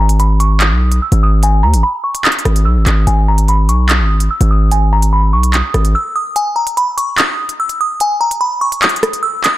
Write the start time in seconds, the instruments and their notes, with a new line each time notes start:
Already playing: 808-style bass G#1
0.00 synth bell A#5
0.09 closed hi-hat
0.20 synth bell B5, closed hi-hat
0.40 synth bell C#6, closed hi-hat
0.60 synth bell D#6, clap, closed hi-hat
0.71 808-style bass B1
0.92 closed hi-hat
1.02 synth bell E6
1.12 808-style bass G#1, closed hi-hat
1.23 synth bell D#6
1.43 synth bell G#5, closed hi-hat
1.63 808-style bass D#2, synth bell A#5
1.74 808-style bass G#1, closed hi-hat
1.83 synth bell B5
2.04 synth bell C#6
2.15 closed hi-hat
2.25 synth bell D#6, clap, closed hi-hat
2.32 closed hi-hat
2.39 closed hi-hat
2.45 808-style bass G#1, cross-stick, closed hi-hat
2.56 closed hi-hat
2.65 808-style bass B1, synth bell E6
2.76 808-style bass G#1
2.86 808-style bass G#1, synth bell D#6, clap, closed hi-hat
3.07 808-style bass G#1, synth bell G#5, closed hi-hat
3.28 synth bell A#5
3.38 closed hi-hat
3.48 synth bell B5, closed hi-hat
3.69 808-style bass B1, synth bell C#6, closed hi-hat
3.89 synth bell D#6, clap, closed hi-hat
4.00 808-style bass G#1
4.20 closed hi-hat
4.31 synth bell E6
4.41 808-style bass G#1, closed hi-hat
4.51 synth bell D#6
4.72 synth bell G#5, closed hi-hat
4.93 synth bell A#5
5.02 closed hi-hat
5.13 synth bell B5
5.33 808-style bass B1, synth bell C#6
5.43 closed hi-hat
5.54 synth bell D#6, clap, closed hi-hat
5.74 808-style bass G#1, cross-stick, closed hi-hat
5.85 closed hi-hat
5.95 synth bell E6
6.16 synth bell D#6
6.36 synth bell G#5, closed hi-hat
6.56 synth bell A#5
6.67 closed hi-hat
6.77 synth bell B5, closed hi-hat
6.97 synth bell C#6, closed hi-hat
7.18 synth bell D#6, clap, closed hi-hat
7.49 closed hi-hat
7.60 synth bell E6
7.69 closed hi-hat
7.81 synth bell D#6
8.00 synth bell G#5, closed hi-hat
8.21 synth bell A#5
8.31 closed hi-hat
8.41 synth bell B5
8.61 synth bell C#6
8.72 closed hi-hat
8.82 synth bell D#6, clap, closed hi-hat
8.89 closed hi-hat
8.96 closed hi-hat
9.03 cross-stick, closed hi-hat
9.13 closed hi-hat
9.23 synth bell E6
9.44 synth bell D#6, clap, closed hi-hat